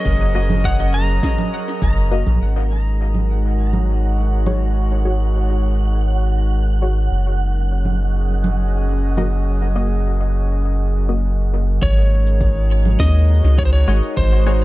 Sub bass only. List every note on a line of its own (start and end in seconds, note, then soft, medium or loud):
0.05 1.20 F#1 loud
1.82 2.24 F#1 loud
2.27 2.39 A#1 loud
2.41 7.09 G#1 medium
7.11 11.79 F#1 medium
11.82 12.97 G#1 loud
13.00 13.41 D#2 medium
13.44 13.85 C#2 loud
13.88 14.01 G#1 loud
14.17 14.64 G#1 loud